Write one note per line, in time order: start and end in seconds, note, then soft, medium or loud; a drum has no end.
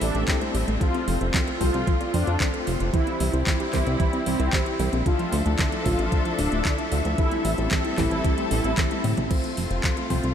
0.00 0.11 A1 medium
0.00 0.79 G3 medium
0.00 2.89 A3 medium
0.00 0.12 C4 medium
0.00 2.89 C4 medium
0.00 0.35 D4 loud
0.00 0.12 E4 medium
0.00 0.12 G4 medium
0.00 0.13 G4 medium
0.00 0.77 A4 medium
0.00 0.12 C5 medium
0.00 0.77 E5 medium
0.00 open hi-hat loud
0.15 0.25 A1 medium
0.15 0.26 A3 medium
0.15 0.38 C4 medium
0.15 0.38 E4 medium
0.15 0.38 G4 medium
0.15 0.38 A4 loud
0.15 closed hi-hat soft
0.28 0.36 A3 loud
0.28 kick loud
0.28 clap loud
0.28 closed hi-hat medium
0.41 0.49 A3 medium
0.41 0.66 C4 medium
0.41 0.66 E4 medium
0.41 0.66 G4 medium
0.41 0.66 C5 medium
0.41 closed hi-hat soft
0.55 0.64 A1 medium
0.55 0.66 G4 loud
0.55 open hi-hat medium
0.68 0.78 A1 medium
0.68 0.76 A3 loud
0.68 closed hi-hat soft
0.81 0.86 F3 medium
0.81 1.18 C4 medium
0.81 1.14 F4 loud
0.81 2.91 F4 medium
0.81 1.18 F4 medium
0.81 1.18 A4 medium
0.81 1.18 C5 medium
0.81 kick loud
0.81 closed hi-hat medium
0.94 1.02 C4 medium
0.94 closed hi-hat soft
1.08 1.18 F1 medium
1.08 1.12 F3 medium
1.08 open hi-hat loud
1.21 1.31 F1 medium
1.21 1.58 C4 medium
1.21 1.29 F4 medium
1.21 1.58 F4 medium
1.21 1.58 A4 medium
1.21 1.58 C5 loud
1.21 closed hi-hat soft
1.34 1.42 F3 loud
1.34 kick loud
1.34 clap loud
1.34 closed hi-hat medium
1.48 1.59 A4 medium
1.48 closed hi-hat soft
1.61 1.71 C2 medium
1.61 1.65 F3 loud
1.61 1.97 C4 loud
1.61 2.05 F4 loud
1.61 1.97 F4 medium
1.61 1.97 A4 medium
1.61 1.97 C5 loud
1.61 kick medium
1.61 open hi-hat medium
1.74 1.84 C2 medium
1.74 1.86 C4 medium
1.74 closed hi-hat soft
1.87 1.92 F3 medium
1.87 kick loud
1.87 closed hi-hat medium
2.01 2.37 C4 medium
2.01 2.08 C4 medium
2.01 2.37 F4 medium
2.01 2.37 A4 medium
2.01 2.37 D5 medium
2.01 closed hi-hat soft
2.14 2.24 F2 medium
2.14 2.19 F3 medium
2.14 2.47 D4 loud
2.14 open hi-hat loud
2.27 2.37 F2 medium
2.27 2.35 F4 medium
2.27 closed hi-hat soft
2.40 2.48 F3 loud
2.40 2.90 C4 medium
2.40 2.90 F4 medium
2.40 2.90 A4 medium
2.40 2.90 C5 loud
2.40 kick loud
2.40 clap loud
2.40 closed hi-hat medium
2.54 2.65 A4 medium
2.54 closed hi-hat soft
2.67 2.77 F1 medium
2.67 2.72 F3 loud
2.67 open hi-hat medium
2.80 2.90 F1 medium
2.80 2.92 C4 medium
2.80 closed hi-hat soft
2.94 2.98 E3 medium
2.94 5.04 G3 medium
2.94 3.30 C4 medium
2.94 5.04 C4 medium
2.94 3.30 E4 medium
2.94 3.27 E4 loud
2.94 5.04 E4 medium
2.94 3.30 G4 medium
2.94 3.30 C5 medium
2.94 kick loud
2.94 closed hi-hat medium
3.07 3.14 C4 medium
3.07 closed hi-hat soft
3.20 3.30 C2 medium
3.20 3.25 E3 medium
3.20 open hi-hat loud
3.33 3.43 C2 medium
3.33 3.70 C4 medium
3.33 3.41 E4 medium
3.33 3.70 E4 medium
3.33 3.70 G4 medium
3.33 3.70 C5 loud
3.33 closed hi-hat soft
3.47 3.54 E3 loud
3.47 kick loud
3.47 clap loud
3.47 closed hi-hat medium
3.60 3.71 G4 medium
3.60 closed hi-hat soft
3.73 3.83 C2 medium
3.73 3.78 E3 loud
3.73 4.10 C4 loud
3.73 4.10 E4 medium
3.73 4.18 E4 loud
3.73 4.10 G4 medium
3.73 4.10 C5 loud
3.73 kick medium
3.73 clap soft
3.73 open hi-hat medium
3.87 3.96 C2 medium
3.87 3.98 C4 medium
3.87 closed hi-hat soft
4.00 4.04 E3 medium
4.00 kick loud
4.00 closed hi-hat medium
4.13 4.50 C4 medium
4.13 4.21 C4 medium
4.13 4.50 E4 medium
4.13 4.50 G4 medium
4.13 4.50 D5 medium
4.13 closed hi-hat soft
4.26 4.36 C2 medium
4.26 4.31 E3 medium
4.26 4.60 C4 loud
4.26 open hi-hat loud
4.39 4.50 C2 medium
4.39 4.47 E4 medium
4.39 closed hi-hat soft
4.53 4.60 E3 loud
4.53 5.03 C4 medium
4.53 5.03 E4 medium
4.53 5.03 G4 medium
4.53 5.03 C5 loud
4.53 kick loud
4.53 clap loud
4.53 closed hi-hat medium
4.66 4.78 G4 medium
4.66 closed hi-hat soft
4.79 4.89 C2 loud
4.79 4.84 E3 loud
4.79 open hi-hat medium
4.93 5.03 A#1 medium
4.93 5.04 C4 medium
4.93 closed hi-hat soft
5.06 5.10 D3 medium
5.06 7.16 F3 medium
5.06 7.16 A3 medium
5.06 5.43 D4 medium
5.06 7.16 D4 medium
5.06 5.39 F4 loud
5.06 5.43 F4 medium
5.06 5.43 A4 medium
5.06 7.16 A4 medium
5.06 5.43 E5 medium
5.06 9.27 E5 medium
5.06 kick loud
5.06 closed hi-hat medium
5.19 5.27 F3 medium
5.19 closed hi-hat soft
5.32 5.42 D2 medium
5.32 5.37 D3 medium
5.32 open hi-hat loud
5.46 5.56 D2 medium
5.46 5.53 A3 medium
5.46 5.82 D4 medium
5.46 5.82 E4 medium
5.46 5.82 F4 medium
5.46 5.82 A4 loud
5.46 closed hi-hat soft
5.59 5.67 D3 loud
5.59 kick loud
5.59 clap loud
5.59 closed hi-hat medium
5.72 5.84 D4 medium
5.72 closed hi-hat soft
5.85 5.96 A1 medium
5.85 5.90 D3 loud
5.85 6.22 D4 loud
5.85 6.22 F4 medium
5.85 6.30 F4 loud
5.85 6.22 A4 loud
5.85 6.22 E5 medium
5.85 kick medium
5.85 open hi-hat medium
5.99 6.09 A1 medium
5.99 6.10 F3 medium
5.99 closed hi-hat soft
6.12 6.17 D3 medium
6.12 kick loud
6.12 closed hi-hat medium
6.25 6.33 F3 medium
6.25 6.62 D4 medium
6.25 6.62 E4 medium
6.25 6.62 F4 medium
6.25 6.62 C5 medium
6.25 closed hi-hat soft
6.38 6.49 D1 loud
6.38 6.43 D3 medium
6.38 6.72 D4 loud
6.38 open hi-hat loud
6.52 6.62 D1 medium
6.52 6.60 A3 medium
6.52 closed hi-hat soft
6.65 6.73 D3 loud
6.65 7.15 D4 medium
6.65 7.15 E4 medium
6.65 7.15 F4 medium
6.65 7.15 A4 loud
6.65 kick loud
6.65 clap loud
6.65 closed hi-hat medium
6.78 6.90 D4 medium
6.78 closed hi-hat soft
6.92 7.02 D2 medium
6.92 6.96 D3 loud
6.92 open hi-hat loud
7.05 7.15 D2 medium
7.05 7.17 F3 medium
7.05 closed hi-hat soft
7.18 7.23 E3 medium
7.18 9.29 G3 medium
7.18 9.29 A3 medium
7.18 7.55 C4 medium
7.18 9.29 C4 medium
7.18 7.55 E4 medium
7.18 7.52 E4 loud
7.18 7.55 G4 medium
7.18 7.55 A4 medium
7.18 9.29 A4 medium
7.18 kick loud
7.18 closed hi-hat medium
7.31 7.39 A3 medium
7.31 closed hi-hat soft
7.45 7.55 A1 medium
7.45 7.49 E3 medium
7.45 open hi-hat loud
7.58 7.68 A1 medium
7.58 7.95 C4 medium
7.58 7.66 C4 medium
7.58 7.95 E4 medium
7.58 7.95 G4 medium
7.58 7.95 A4 loud
7.58 closed hi-hat soft
7.71 7.79 E3 loud
7.71 kick loud
7.71 clap loud
7.71 closed hi-hat medium
7.85 7.96 E4 medium
7.85 closed hi-hat soft
7.98 8.08 A1 loud
7.98 8.03 E3 loud
7.98 8.35 C4 loud
7.98 8.35 E4 medium
7.98 8.42 E4 loud
7.98 8.35 G4 medium
7.98 8.35 A4 loud
7.98 kick medium
7.98 clap soft
7.98 open hi-hat loud
8.11 8.21 A1 medium
8.11 8.23 A3 medium
8.11 closed hi-hat soft
8.24 8.29 E3 medium
8.24 kick loud
8.24 closed hi-hat medium
8.38 8.45 A3 medium
8.38 8.74 C4 medium
8.38 8.74 E4 medium
8.38 8.74 G4 medium
8.38 8.74 C5 medium
8.38 closed hi-hat soft
8.51 8.61 A1 medium
8.51 8.56 E3 medium
8.51 8.84 E4 loud
8.51 open hi-hat loud
8.64 8.74 A1 medium
8.64 8.72 C4 medium
8.64 closed hi-hat soft
8.77 8.85 E3 loud
8.77 9.27 C4 medium
8.77 9.27 E4 medium
8.77 9.28 G4 medium
8.77 9.27 A4 loud
8.77 kick loud
8.77 clap loud
8.77 closed hi-hat medium
8.91 9.02 E4 medium
8.91 closed hi-hat soft
8.91 high tom medium
9.04 9.14 A2 medium
9.04 9.09 E3 loud
9.04 open hi-hat medium
9.04 mid tom medium
9.17 9.27 A1 medium
9.17 9.29 A3 medium
9.17 closed hi-hat soft
9.17 mid tom medium
9.30 9.35 F3 medium
9.30 10.34 A3 medium
9.30 9.67 C4 medium
9.30 10.34 C4 medium
9.30 9.67 F4 medium
9.30 10.34 F4 medium
9.30 9.67 A4 medium
9.30 9.67 C5 medium
9.30 kick loud
9.30 closed hi-hat medium
9.30 crash medium
9.44 9.52 C4 medium
9.44 closed hi-hat soft
9.57 9.67 F1 medium
9.57 9.62 F3 medium
9.57 open hi-hat loud
9.70 9.80 F1 medium
9.70 10.07 C4 medium
9.70 10.07 F4 medium
9.70 9.78 F4 medium
9.70 10.07 A4 medium
9.70 10.07 C5 medium
9.70 closed hi-hat soft
9.84 9.91 F3 loud
9.84 kick loud
9.84 clap loud
9.84 closed hi-hat medium
9.97 10.09 A4 medium
9.97 closed hi-hat soft
10.10 10.20 C2 medium
10.10 10.15 F3 loud
10.10 10.34 C4 loud
10.10 10.34 F4 medium
10.10 10.34 A4 medium
10.10 10.34 C5 loud
10.10 kick medium
10.10 open hi-hat medium
10.24 10.34 C2 medium
10.24 10.34 C4 medium
10.24 closed hi-hat soft